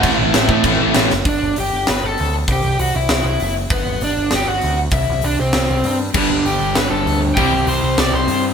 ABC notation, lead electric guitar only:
X:1
M:4/4
L:1/8
Q:1/4=196
K:G
V:1 name="Lead electric guitar"
[Ee]3 z4 z | [Dd]2 [Gg]2 [Bb] [Aa]2 z | [Gg]2 [Ff] [Ee]4 z | [B,B]2 [Dd]2 [Gg] [Ff]2 z |
[Ee]2 [Dd] [Cc]4 z | [Dd]2 [Gg]2 [Bb] [Aa]2 z | [Gg]2 [cc']2 [dd'] [cc']2 z |]